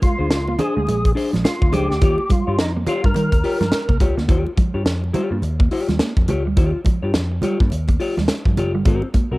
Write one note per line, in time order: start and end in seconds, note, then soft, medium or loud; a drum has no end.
0.02 0.15 G#3 medium
0.02 0.61 F4 medium
0.02 muted clean electric guitar stroke soft
0.02 kick loud
0.02 closed hi-hat medium
0.02 high conga medium
0.19 0.31 D2 medium
0.19 0.29 D4 medium
0.19 0.29 G#4 soft
0.19 0.29 C5 medium
0.19 muted clean electric guitar stroke soft
0.31 0.55 C#2 loud
0.31 snare loud
0.31 closed hi-hat loud
0.31 muted conga soft
0.47 0.57 A#3 medium
0.47 muted clean electric guitar stroke medium
0.47 muted conga soft
0.59 0.77 D4 medium
0.59 1.12 G#4 loud
0.59 0.76 G#4 medium
0.59 0.75 C5 medium
0.59 muted clean electric guitar stroke soft
0.59 closed hi-hat medium
0.59 low conga medium
0.76 0.87 D2 loud
0.76 0.85 G#3 medium
0.76 muted clean electric guitar stroke soft
0.87 1.13 A#1 medium
0.87 1.01 G#3 medium
0.87 muted clean electric guitar stroke soft
0.87 closed hi-hat medium
0.87 muted conga soft
1.05 muted clean electric guitar stroke soft
1.05 kick medium
1.05 closed hi-hat medium
1.15 1.34 D4 medium
1.15 1.33 G#4 medium
1.15 1.32 C5 loud
1.15 muted clean electric guitar stroke soft
1.15 open hi-hat medium
1.33 1.44 A#1 medium
1.33 1.42 F3 medium
1.33 muted clean electric guitar stroke medium
1.33 snare soft
1.33 closed hi-hat soft
1.33 high conga medium
1.44 1.74 F4 medium
1.44 snare loud
1.44 closed hi-hat loud
1.44 high conga medium
1.62 1.72 D2 loud
1.62 muted clean electric guitar stroke medium
1.62 kick loud
1.72 1.88 C#2 medium
1.72 1.86 F3 medium
1.72 1.91 D4 medium
1.72 2.32 G4 loud
1.72 1.90 G#4 loud
1.72 1.89 C5 loud
1.72 closed hi-hat medium
1.72 high conga medium
1.72 low conga medium
1.90 2.00 D2 medium
1.90 muted clean electric guitar stroke medium
1.90 snare soft
2.01 2.17 D#2 medium
2.01 2.15 A#3 medium
2.01 2.20 F4 medium
2.01 2.20 G4 medium
2.01 2.19 C#5 loud
2.01 kick loud
2.01 closed hi-hat medium
2.01 low conga medium
2.18 muted clean electric guitar stroke soft
2.18 muted conga soft
2.30 2.44 G3 medium
2.30 2.60 F4 medium
2.30 muted clean electric guitar stroke soft
2.30 kick medium
2.30 closed hi-hat medium
2.30 high conga medium
2.47 2.59 G2 medium
2.47 2.57 F4 medium
2.47 2.57 G4 medium
2.47 2.57 C#5 medium
2.47 muted clean electric guitar stroke soft
2.58 2.83 F2 loud
2.58 2.73 D#4 loud
2.58 muted clean electric guitar stroke soft
2.58 snare loud
2.58 closed hi-hat loud
2.58 muted conga soft
2.76 2.85 A#3 medium
2.76 muted clean electric guitar stroke soft
2.87 3.05 F4 medium
2.87 3.04 G4 loud
2.87 3.03 C#5 loud
2.87 muted clean electric guitar stroke soft
2.87 closed hi-hat medium
2.87 low conga medium
3.04 3.14 G2 medium
3.04 3.13 G3 medium
3.04 3.98 A#4 medium
3.04 muted clean electric guitar stroke soft
3.04 kick loud
3.14 3.30 D#3 loud
3.14 3.29 G3 medium
3.14 muted clean electric guitar stroke soft
3.14 closed hi-hat medium
3.14 muted conga soft
3.32 3.42 D#2 medium
3.32 muted clean electric guitar stroke soft
3.32 kick medium
3.32 closed hi-hat medium
3.32 muted conga soft
3.44 3.62 F4 medium
3.44 3.61 G4 medium
3.44 3.60 C#5 medium
3.44 muted clean electric guitar stroke soft
3.44 open hi-hat medium
3.61 3.71 G2 medium
3.61 3.70 F3 medium
3.61 muted clean electric guitar stroke soft
3.61 snare soft
3.61 closed hi-hat soft
3.61 high conga medium
3.72 snare loud
3.72 closed hi-hat loud
3.72 high conga medium
3.88 4.00 C2 medium
3.88 3.98 A#3 medium
3.88 muted clean electric guitar stroke soft
3.88 kick loud
3.88 muted conga soft
4.00 4.15 C#2 medium
4.00 4.19 F4 medium
4.00 4.18 G4 medium
4.00 4.16 C#5 medium
4.00 muted clean electric guitar stroke soft
4.00 kick loud
4.00 closed hi-hat medium
4.00 high conga medium
4.00 low conga medium
4.17 4.27 D2 medium
4.17 4.26 A#3 medium
4.17 muted clean electric guitar stroke soft
4.17 snare soft
4.28 4.44 D#2 medium
4.28 4.42 D#3 medium
4.28 4.51 F4 medium
4.28 4.46 G4 medium
4.28 4.45 C#5 medium
4.28 kick loud
4.28 closed hi-hat medium
4.28 low conga medium
4.46 muted clean electric guitar stroke soft
4.46 muted conga soft
4.57 4.71 F3 medium
4.57 muted clean electric guitar stroke soft
4.57 kick medium
4.57 closed hi-hat medium
4.57 high conga medium
4.74 4.84 G2 medium
4.74 4.84 F4 soft
4.74 4.84 G4 soft
4.74 4.84 C#5 medium
4.85 5.10 F2 medium
4.85 muted clean electric guitar stroke soft
4.85 snare loud
4.85 closed hi-hat loud
5.02 muted clean electric guitar stroke soft
5.02 muted conga soft
5.13 5.27 G3 medium
5.13 5.36 F4 medium
5.13 5.31 G4 medium
5.13 5.30 C#5 medium
5.13 closed hi-hat medium
5.13 high conga medium
5.13 low conga medium
5.31 5.41 G2 medium
5.31 5.41 A#3 medium
5.31 muted clean electric guitar stroke soft
5.42 5.67 D#2 medium
5.42 muted clean electric guitar stroke soft
5.42 closed hi-hat medium
5.42 muted conga soft
5.59 5.69 A#3 medium
5.59 muted clean electric guitar stroke soft
5.59 kick loud
5.71 5.93 F4 medium
5.71 5.90 G4 medium
5.71 5.89 C#5 medium
5.71 muted clean electric guitar stroke soft
5.71 open hi-hat medium
5.88 5.98 D#2 medium
5.88 5.98 G3 medium
5.88 muted clean electric guitar stroke soft
5.88 snare soft
5.88 closed hi-hat soft
5.88 high conga medium
5.99 6.13 A#3 medium
5.99 snare loud
5.99 closed hi-hat medium
5.99 muted conga soft
5.99 high conga medium
6.17 6.27 F2 medium
6.17 muted clean electric guitar stroke soft
6.17 kick loud
6.17 muted conga soft
6.28 6.46 C#2 medium
6.28 6.47 F4 medium
6.28 6.45 G4 medium
6.28 6.44 C#5 medium
6.28 closed hi-hat medium
6.28 high conga medium
6.28 low conga medium
6.45 6.56 D2 medium
6.45 6.55 G3 medium
6.45 muted clean electric guitar stroke medium
6.57 6.72 D#2 loud
6.57 6.71 D#3 medium
6.57 6.79 F4 medium
6.57 6.74 G4 medium
6.57 6.72 C#5 medium
6.57 kick loud
6.57 closed hi-hat medium
6.57 low conga medium
6.74 muted clean electric guitar stroke soft
6.85 6.99 F3 medium
6.85 muted clean electric guitar stroke soft
6.85 kick loud
6.85 closed hi-hat medium
6.85 high conga medium
7.03 7.16 G2 medium
7.03 7.13 F4 medium
7.03 7.13 G4 soft
7.03 7.12 C#5 medium
7.14 7.39 F2 medium
7.14 muted clean electric guitar stroke soft
7.14 snare loud
7.14 closed hi-hat medium
7.32 muted clean electric guitar stroke soft
7.42 7.56 G3 medium
7.42 7.61 F4 medium
7.42 7.60 G4 medium
7.42 7.59 C#5 loud
7.42 closed hi-hat medium
7.42 high conga medium
7.42 low conga medium
7.60 7.70 G2 medium
7.60 7.69 A#3 medium
7.60 muted clean electric guitar stroke soft
7.60 kick loud
7.70 7.96 D#2 medium
7.70 muted clean electric guitar stroke soft
7.70 closed hi-hat medium
7.70 muted conga soft
7.88 7.97 A#3 medium
7.88 muted clean electric guitar stroke soft
7.88 kick medium
7.88 closed hi-hat medium
7.88 muted conga soft
8.00 8.18 F4 medium
8.00 8.17 G4 medium
8.00 8.16 C#5 loud
8.00 muted clean electric guitar stroke soft
8.00 open hi-hat medium
8.17 8.27 D#2 loud
8.17 8.26 G3 medium
8.17 muted clean electric guitar stroke soft
8.17 snare soft
8.17 high conga medium
8.28 snare loud
8.28 closed hi-hat loud
8.28 muted conga soft
8.28 high conga medium
8.45 8.55 G2 medium
8.45 8.54 F3 medium
8.45 muted clean electric guitar stroke medium
8.45 kick medium
8.57 8.74 F#1 medium
8.57 8.75 F4 medium
8.57 8.74 G4 medium
8.57 8.73 C#5 medium
8.57 muted clean electric guitar stroke soft
8.57 closed hi-hat medium
8.57 high conga medium
8.57 low conga medium
8.74 8.84 G1 medium
8.74 8.83 G3 medium
8.74 muted clean electric guitar stroke soft
8.85 9.00 G#1 medium
8.85 8.99 G#3 loud
8.85 9.08 C4 medium
8.85 9.04 F#4 medium
8.85 9.03 A#4 medium
8.85 kick loud
8.85 closed hi-hat medium
8.85 muted conga soft
8.85 low conga medium
9.02 muted clean electric guitar stroke soft
9.02 muted conga soft
9.14 9.27 A#3 medium
9.14 muted clean electric guitar stroke soft
9.14 kick medium
9.14 closed hi-hat medium
9.14 high conga medium
9.32 9.38 C2 medium
9.32 9.38 C4 soft
9.32 9.38 F#4 medium
9.32 9.38 A#4 medium